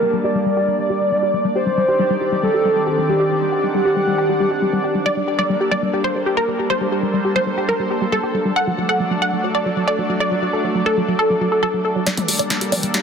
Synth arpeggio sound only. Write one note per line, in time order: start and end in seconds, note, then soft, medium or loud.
0.02 0.06 G3 medium
0.13 0.19 G3 medium
0.24 0.33 G4 loud
0.35 0.39 G3 medium
0.46 0.52 G3 medium
0.57 0.66 G4 loud
0.68 0.72 G3 medium
0.79 0.85 G3 medium
0.90 0.99 G4 loud
1.01 1.04 G3 medium
1.12 1.18 G3 medium
1.23 1.32 G4 loud
1.34 1.37 G3 medium
1.44 1.51 G3 medium
1.55 1.65 G4 loud
1.66 1.70 G3 medium
1.77 1.84 G3 medium
1.88 1.98 G4 loud
1.99 2.03 G3 medium
2.10 2.16 G3 medium
2.21 2.30 G4 loud
2.32 2.36 G3 medium
2.43 2.49 G3 medium
2.54 2.63 G4 loud
2.65 2.69 G3 medium
2.76 2.82 G3 medium
2.87 2.96 G4 loud
2.98 3.01 G3 medium
3.09 3.15 G3 medium
3.20 3.29 G4 loud
3.31 3.34 G3 medium
3.42 3.48 G3 medium
3.52 3.62 G4 loud
3.63 3.67 G3 medium
3.74 3.81 G3 medium
3.85 3.95 G4 medium
3.96 4.00 G3 medium
4.07 4.13 G3 medium
4.18 4.28 G4 loud
4.29 4.33 G3 medium
4.40 4.46 G3 medium
4.51 4.60 G4 loud
4.62 4.66 G3 medium
4.73 4.79 G3 medium
4.84 4.93 G4 loud
4.95 4.99 G3 medium
5.06 5.10 G3 medium
5.17 5.23 G3 medium
5.28 5.37 G4 loud
5.39 5.42 G3 medium
5.50 5.56 G3 medium
5.61 5.70 G4 loud
5.71 5.75 G3 medium
5.82 5.89 G3 medium
5.93 6.03 G4 loud
6.04 6.08 G3 medium
6.15 6.22 G3 medium
6.26 6.36 G4 loud
6.37 6.41 G3 medium
6.48 6.54 G3 medium
6.59 6.68 G4 medium
6.70 6.74 G3 medium
6.81 6.87 G3 medium
6.92 7.01 G4 medium
7.03 7.07 G3 medium
7.14 7.20 G3 medium
7.25 7.34 G4 medium
7.36 7.39 G3 medium
7.47 7.53 G3 medium
7.58 7.67 G4 loud
7.69 7.72 G3 medium
7.79 7.86 G3 medium
7.90 8.00 G4 loud
8.01 8.05 G3 medium
8.12 8.19 G3 medium
8.23 8.33 G4 loud
8.34 8.38 G3 medium
8.45 8.51 G3 medium
8.56 8.65 A4 loud
8.67 8.71 F#3 medium
8.78 8.84 F#3 medium
8.89 8.98 A4 loud
9.00 9.04 F#3 medium
9.11 9.17 F#3 medium
9.22 9.31 A4 loud
9.33 9.37 F#3 medium
9.44 9.50 F#3 medium
9.55 9.64 A4 medium
9.66 9.69 F#3 medium
9.77 9.83 F#3 medium
9.87 9.97 A4 loud
9.98 10.02 F#3 medium
10.09 10.16 F#3 medium
10.20 10.30 A4 medium
10.31 10.35 F#3 medium
10.42 10.49 F#3 medium
10.53 10.63 A4 loud
10.64 10.68 F#3 medium
10.75 10.81 F#3 medium
10.86 10.95 A4 loud
10.97 11.01 F#3 medium
11.08 11.14 F#3 medium
11.19 11.28 A4 loud
11.30 11.34 F#3 medium
11.41 11.47 F#3 medium
11.52 11.61 A4 loud
11.63 11.67 F#3 medium
11.74 11.80 F#3 medium
11.85 11.94 A4 loud
11.96 11.99 F#3 medium
12.07 12.10 G3 medium
12.17 12.24 G3 medium
12.28 12.38 G4 loud
12.39 12.43 G3 medium
12.50 12.57 G3 medium
12.61 12.71 G4 medium
12.72 12.76 G3 medium
12.83 12.89 G3 medium
12.94 13.02 G4 loud